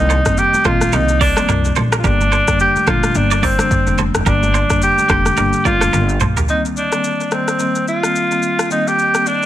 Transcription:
Already playing: upright bass C2, marimba D#3 G3 A#3 C4, tenor saxophone D#4
0.10 clean electric guitar A4 C5, shaker
0.25 marimba D#3 G3 A#3 C4, kick, cross-stick, mid tom, shaker
0.37 tenor saxophone G4, shaker
0.54 high conga, shaker
0.65 upright bass A#1, marimba D#3 G3 A#3 C4, tenor saxophone F4, clean electric guitar A4 C5, kick, cross-stick, high conga, low conga, shaker
0.81 cross-stick, high conga, shaker
0.93 upright bass C2, marimba D#3 G3 A#3 C4, tenor saxophone D#4, clean electric guitar G4 A#4, shaker
1.09 shaker
1.21 tenor saxophone D4, clean electric guitar A#4 D5, kick, open hi-hat, shaker
1.36 marimba D#3 G3 A#3 C4, clean electric guitar A4 C5, cross-stick, high conga, shaker
1.49 upright bass C2, clean electric guitar G4 A#4, mid tom, shaker
1.65 shaker
1.76 upright bass A#1, clean electric guitar A4 C5, high conga, low conga, shaker
1.92 clean electric guitar G4 A#4, cross-stick, shaker
1.99 tenor saxophone F4
2.04 upright bass G1, marimba D3 G3 A#3 D4, tenor saxophone D4, clean electric guitar G4 A#4, kick, low conga, shaker
2.21 high conga, shaker
2.32 clean electric guitar A4 C5, shaker
2.48 marimba D3 G3 A#3 D4, kick, cross-stick, mid tom, shaker
2.60 tenor saxophone G4, shaker
2.76 high conga, shaker
2.87 upright bass A#1, marimba D3 G3 A#3 D4, tenor saxophone F4, clean electric guitar A4 C5, kick, cross-stick, high conga, low conga, shaker
3.03 cross-stick, high conga, shaker
3.15 upright bass G1, marimba D3 G3 A#3 D4, tenor saxophone D4, shaker
3.31 clean electric guitar A#4 D5, shaker
3.43 tenor saxophone C4, clean electric guitar A#4 D5, kick, open hi-hat, shaker
3.59 marimba D3 G3 A#3 D4, cross-stick, high conga, shaker
3.71 kick, mid tom, shaker
3.86 upright bass F1, marimba D3 G3 A#3 D4, shaker
3.98 clean electric guitar A4 C5, high conga, low conga, shaker
4.15 upright bass F1, cross-stick, shaker
4.26 upright bass G1, marimba D3 G3 A#3 D4, tenor saxophone D4, clean electric guitar G4 A#4, kick, low conga, shaker
4.43 high conga, shaker
4.54 clean electric guitar A4 C5, shaker
4.70 marimba D3 G3 A#3 D4, kick, cross-stick, mid tom, shaker
4.82 tenor saxophone G4, shaker
4.98 high conga, shaker
5.09 upright bass F1, marimba D3 G3 A#3 D4, tenor saxophone G4, clean electric guitar A4 C5, kick, cross-stick, high conga, low conga, shaker
5.25 cross-stick, high conga, shaker
5.37 upright bass G1, marimba D3 G3 A#3 D4, clean electric guitar G4 A#4, shaker
5.53 shaker
5.65 upright bass G1, tenor saxophone F4, clean electric guitar A#4 D5, kick, high conga, shaker
5.81 upright bass F1, marimba D3 G3 A#3 D4, clean electric guitar A4 C5, cross-stick, high conga, shaker
5.93 upright bass G1, clean electric guitar G4 A#4, high tom, shaker
6.09 shaker
6.20 upright bass A#1, clean electric guitar A4 C5, mid tom, high conga, low conga, shaker
6.37 clean electric guitar G4 A#4, floor tom, shaker
6.48 marimba D#3 G3 A#3 C4, tenor saxophone D#4, shaker
6.65 shaker
6.77 tenor saxophone D4, shaker
6.92 marimba D#3 G3 A#3 C4, cross-stick, shaker
7.04 shaker
7.20 shaker
7.31 marimba D#3 G3 A#3 C4, tenor saxophone C4, cross-stick, shaker
7.48 cross-stick, shaker
7.59 marimba D#3 G3 A#3 C4, shaker
7.75 shaker
7.88 tenor saxophone F4, shaker
8.03 marimba D#3 G3 A#3 C4, cross-stick, shaker
8.16 shaker
8.31 marimba D#3 G3 A#3 C4, shaker
8.42 shaker
8.59 cross-stick, shaker
8.70 marimba D#3 G3 A#3 C4, tenor saxophone D#4, shaker
8.88 tenor saxophone G4, shaker
8.99 shaker
9.14 marimba D#3 G3 A#3 C4, cross-stick, shaker
9.26 tenor saxophone D4, shaker

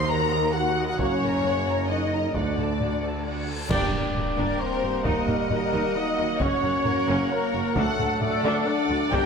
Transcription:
Already playing: tuba D#2, double bass section D#2, cello section D#2
0.08 viola section F#4 F#5, french horn section A#4, violin section A#5
0.31 viola section A#4 D#5
0.53 viola section F#4 F#5, french horn section F#4, violin section F#5
0.77 viola section A#4 D#5
0.87 french horn section F#4, violin section F#5
0.98 tuba F#1, double bass section F#1, cello section F#2, trombone section F#3 A#3, french horn section C#4, violin section C#5, viola section C#5 F#5, taiko
1.22 viola section A#4 A#5, taiko low-mid
1.44 viola section C#5 F#5, taiko low-mid
1.68 viola section A#4 A#5
1.89 french horn section D#4, viola section C#5 F#5, violin section D#5
2.12 viola section A#4 A#5
2.34 double bass section D2, cello section D2, tuba D2, trombone section F#3 A3, french horn section D4, viola section F#4 F#5, violin section D5, taiko, reverse cymbal
2.58 viola section A4 A5, taiko low-mid
2.80 viola section F#4 F#5, taiko low-mid
3.03 viola section A4 A5
3.26 viola section F#4 F#5
3.48 viola section A4 A5
3.69 double bass section G1, tuba G1, cello section G2, trombone section G3 A#3, french horn section D4, viola section D4 G5, violin section D5, trumpet section D5, concert bass drum, taiko, crash, impact
3.92 double bass section G1, tuba G1, cello section G2, viola section A#4, taiko low-mid
4.15 double bass section G1, tuba G1, cello section G2, viola section G4, violin section A#4, taiko low-mid
4.37 tuba G1, double bass section G1, cello section G2, viola section D4
4.59 french horn section C4, violin section C5, trumpet section C5
4.83 tuba G1, double bass section G1, cello section G2, viola section G4
5.05 tuba D#2, cello section D#2, double bass section D#2, french horn section A#3, viola section D#4 F#5, violin section A#4 D#5, trumpet section A#4, taiko
5.28 double bass section D#2, tuba D#2, cello section D#2, viola section A#4, taiko low-mid
5.50 double bass section D#2, cello section D#2, tuba D#2, french horn section A#3, viola section F#4, violin section A#4, trumpet section A#4, taiko low-mid
5.73 double bass section D#2, tuba D#2, cello section D#2, viola section D#4
5.96 trombone section F#3, french horn section D#4, trumpet section D#5, violin section D#5
6.18 tuba D#2, double bass section D#2, cello section D#2, viola section F#4
6.39 tuba F#1, double bass section F#1, cello section F#2, trombone section A#3, french horn section C#4, viola section C#4, violin section C#5, trumpet section C#5, taiko
6.63 tuba F#1, double bass section F#1, cello section F#2, viola section A#4, taiko low-mid
6.85 tuba F#1, double bass section F#1, cello section F#2, viola section F#4, violin section A#4, taiko low-mid
7.08 double bass section F#1, tuba F#1, cello section F#2, viola section C#4
7.29 french horn section A#3, trumpet section A#4, violin section A#4 C#5
7.53 tuba F#1, double bass section F#1, cello section F#2, viola section F#4
7.75 tuba D2, cello section D2, double bass section D2, trombone section F#3 A3, french horn section A3, viola section D4 F#5, trumpet section A4, violin section A4 F#5, taiko
7.98 tuba D2, cello section D2, double bass section D2, viola section A4, taiko low-mid
8.21 cello section D2, tuba D2, double bass section D2, french horn section A3, viola section F#4, trumpet section A4, violin section A4 D5, taiko low-mid
8.43 double bass section D2, tuba D2, cello section D2, viola section D4
8.66 french horn section D4, violin section A4 D5, trumpet section D5
8.89 double bass section D2, tuba D2, cello section D2, viola section F#4
9.10 double bass section G1, tuba G1, cello section G2, trombone section G3 A#3, viola section D4 G5, french horn section G4, violin section A#4 G5, trumpet section G5, taiko

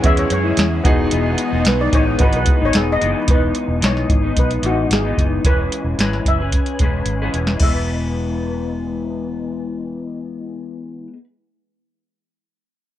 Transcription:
Already playing: string machine C#3 E3 G#3 C#4, upright piano B3 C#4 E4 G#4
0.02 fingered electric bass E2, clean electric guitar E3 G#3 C#4 E4, upright piano B3 C#4 E4 G#4, steel pan E5, kick, closed hi-hat
0.17 steel pan C#5, closed hi-hat
0.30 fingered electric bass F#2, steel pan C#5, closed hi-hat
0.43 clean electric guitar G#3 C#4 E4
0.57 fingered electric bass E2, snare, closed hi-hat
0.83 fingered electric bass E1, clean electric guitar E3 G#3 B3 D#4, string machine G#3 B3 D#4, upright piano B3 D#4 F#4 G#4, kick, closed hi-hat
1.10 fingered electric bass E1, clean electric guitar E3 G#3 B3 D#4, closed hi-hat
1.38 closed hi-hat
1.51 fingered electric bass E1, clean electric guitar G#3 B3 D#4
1.65 fingered electric bass B1, steel pan B4, snare, closed hi-hat
1.81 steel pan D5
1.92 fingered electric bass A1, clean electric guitar E3 G#3 B3 D#4, steel pan C#5, kick, closed hi-hat
2.18 fingered electric bass G#1, clean electric guitar E3 G#3 B3 D#4, upright piano B3 D#4 F#4 B4, kick, closed hi-hat
2.23 steel pan B4
2.33 fingered electric bass B1, steel pan B4, closed hi-hat
2.46 kick, closed hi-hat
2.60 fingered electric bass G#1, clean electric guitar G#3 B3 D#4
2.65 steel pan C#5
2.73 fingered electric bass E1, steel pan G#4, snare, closed hi-hat
2.92 steel pan D#5
3.01 fingered electric bass F#1, clean electric guitar E3 G#3 B3 D#4, closed hi-hat
3.28 fingered electric bass E1, clean electric guitar E3 G#3 B3 D#4, steel pan B4, kick, closed hi-hat
3.55 closed hi-hat
3.68 fingered electric bass E1
3.81 fingered electric bass B1, clean electric guitar E3 G#3 B3 D#4, snare, closed hi-hat
3.85 steel pan C#5
3.97 snare
4.09 fingered electric bass G#1, kick, closed hi-hat
4.22 clean electric guitar G#3 B3 D#4
4.36 fingered electric bass B1, steel pan B4, kick, closed hi-hat
4.51 closed hi-hat
4.62 fingered electric bass A1, clean electric guitar E3 G#3 B3 D#4, steel pan F#4, closed hi-hat
4.89 fingered electric bass G#1, steel pan G#4, snare, closed hi-hat
5.04 clean electric guitar E3 G#3 B3 D#4
5.18 fingered electric bass F#1, kick, closed hi-hat
5.44 fingered electric bass E1, clean electric guitar E3 G#3 C#4 G#4 B4, steel pan B4, kick, closed hi-hat
5.72 closed hi-hat
5.84 fingered electric bass E1
5.98 fingered electric bass G#1, clean electric guitar E3 G#3 C#4 G#4 B4, snare, closed hi-hat
6.13 snare
6.25 fingered electric bass F#1, steel pan E5, kick, closed hi-hat
6.40 clean electric guitar C#4 G#4 B4
6.52 kick, closed hi-hat
6.66 closed hi-hat
6.79 fingered electric bass E1, clean electric guitar G#3 C#4 G#4, kick, closed hi-hat
6.84 clean electric guitar B4
7.06 fingered electric bass G#1, closed hi-hat
7.22 clean electric guitar E3 G#3 C#4 G#4 B4
7.34 fingered electric bass E1, closed hi-hat
7.47 snare
7.57 fingered electric bass E1, clean electric guitar E3, kick, crash
7.63 clean electric guitar G#3 B3, steel pan E5
7.74 clean electric guitar B4

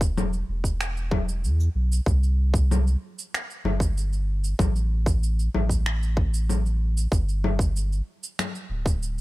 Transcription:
Already playing: sub bass E1
0.01 kick, cabasa
0.18 low conga, cabasa
0.33 cabasa
0.49 sub bass E1
0.64 kick, cabasa
0.81 finger snap, cabasa
0.97 cabasa
1.11 kick, low conga
1.29 cabasa
1.44 sub bass E2, cabasa
1.60 cabasa
1.75 sub bass B1
1.92 cabasa
2.06 sub bass C2, kick, cabasa
2.23 cabasa
2.54 kick, cabasa
2.71 low conga, cabasa
2.87 cabasa
3.19 cabasa
3.34 finger snap, cabasa
3.50 cabasa
3.64 sub bass G1, low conga
3.80 kick, cabasa
3.98 cabasa
4.13 cabasa
4.44 cabasa
4.59 sub bass A1, kick, low conga, cabasa
4.76 cabasa
5.06 kick, cabasa
5.23 cabasa
5.39 cabasa
5.54 sub bass A1, low conga
5.69 kick, cabasa
5.86 finger snap
6.03 cabasa
6.17 kick
6.34 cabasa
6.49 low conga, cabasa
6.66 cabasa
6.97 cabasa
7.12 sub bass G1, kick, cabasa
7.29 cabasa
7.44 low conga
7.59 kick, cabasa
7.76 cabasa
7.92 cabasa
8.23 cabasa
8.39 finger snap, low conga, cabasa
8.55 cabasa
8.70 sub bass D1
8.86 kick, cabasa
9.03 cabasa

